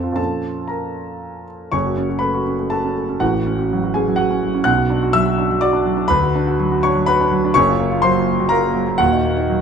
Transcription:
Already playing: F2 F3 C4 A4 A5
0.03 F4
0.12 A#2 F3 C#4 F4 A5
0.17 A4
0.68 A#4 A#5
1.72 F#1 F#2 C#5 C#6
1.86 F#4
1.97 C#4
2.10 F#4
2.19 A3 B4 B5
2.34 F#4
2.47 C#4
2.59 A3
2.70 F#4 A4 A5
2.85 C#4
2.97 A3
3.09 C#4
3.20 A1 A2 F#4 F#5
3.34 F#4
3.46 C#4
3.59 F#4
3.73 F#3
3.84 F#4
3.94 C#4 G#4 G#5
4.08 F#3
4.16 F#4 F#5
4.30 C#4
4.43 F#3
4.55 C#4
4.64 B1 B2 F#5 F#6
4.78 F#4
4.90 D4
5.03 F#4
5.13 F#3 E5 E6
5.26 F#4
5.38 D4
5.50 F#3
5.61 F#4 D5 D6
5.73 D4
5.85 F#3
5.97 D4
6.08 D2 B4 B5
6.23 F#4
6.36 D4
6.47 F#4
6.60 F#3
6.72 F#4
6.83 D4 C#5 C#6
6.95 F#3
7.06 F#4 B4 B5
7.21 D4
7.31 F#3
7.45 D4
7.54 F#1 F#2 C#5 C#6
7.69 F4
7.80 A#3
7.91 F4
8.02 F#3 C5 C6
8.15 F4
8.28 A#3
8.39 F#3
8.49 F4 A#4 A#5
8.63 A#3
8.74 F#3
8.87 A#3
8.98 D#1 D#2 F#4 F#5
9.13 D#4
9.25 A#3
9.37 D#4
9.50 F#3

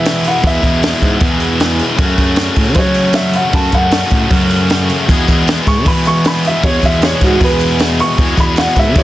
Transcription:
Already playing: E2 B2 E3 G#3 B3 E4 G#4 B4 E5 F#5
0.05 snare, open hi-hat
0.24 F#5, open hi-hat
0.41 E2 B2 E3 G#3 B3 G#4, kick, open hi-hat
0.46 E4 E5
0.63 E2, kick, open hi-hat
0.83 snare, open hi-hat
1.01 G#2, kick, open hi-hat
1.18 E2 B2 E3 G#3 B3 G#4, kick, open hi-hat
1.40 open hi-hat
1.60 snare, open hi-hat
1.79 open hi-hat
1.95 F#2 C#3 F#3 A3 C#4 F#4 A4, kick, open hi-hat
2.18 F#2, kick, open hi-hat
2.36 snare, open hi-hat
2.56 A2, kick, open hi-hat
2.74 F#2 C#3 F#3 A3 C#4 F#4 C5, kick, open hi-hat
2.79 C#5
2.94 open hi-hat
3.13 E5, snare, open hi-hat
3.33 F#5, open hi-hat
3.51 F#2 C#3 F#3 A3 C#4 F#4 A5, kick, open hi-hat
3.72 F#2 F#5, kick, open hi-hat
3.92 snare, open hi-hat
4.11 A2, kick, open hi-hat
4.29 F#2 C#3 F#3 A3 C#4 F#4, kick, open hi-hat
4.50 open hi-hat
4.70 snare, open hi-hat
4.90 open hi-hat
5.07 E2 B2 E3 G#3 B3 F#4 G#4 E5, kick, open hi-hat, tambourine
5.28 E2, kick, open hi-hat, tambourine
5.47 snare, open hi-hat, tambourine
5.58 tambourine
5.67 G#2 C#6, kick, open hi-hat, tambourine
5.85 E2 B2 E3 G#3 B3 G#4 B5, kick, open hi-hat
6.05 C#6, open hi-hat, tambourine
6.25 B5, snare, open hi-hat, tambourine
6.35 tambourine
6.45 E5, open hi-hat
6.61 E2 B2 E3 G#3 B3 G#4 C#5, kick, open hi-hat, tambourine
6.82 E2 E5, kick, open hi-hat, tambourine
7.02 C#5, snare, open hi-hat, tambourine
7.21 G#2 F#4, kick, open hi-hat, tambourine
7.39 E2 B2 E3 G#3 B3 G#4, kick, open hi-hat
7.44 B4
7.59 open hi-hat, tambourine
7.79 snare, open hi-hat, tambourine
7.88 tambourine
8.00 C#6, open hi-hat
8.17 E2 B2 E3 G#3 B3 G#4 D5, kick, open hi-hat, tambourine
8.37 E2 B5, kick, open hi-hat, tambourine
8.56 F#5, snare, open hi-hat, tambourine
8.76 G#2 E5, kick, open hi-hat, tambourine
8.95 E2 B2 E3 G#3 B3 G#4 C#5, kick, open hi-hat

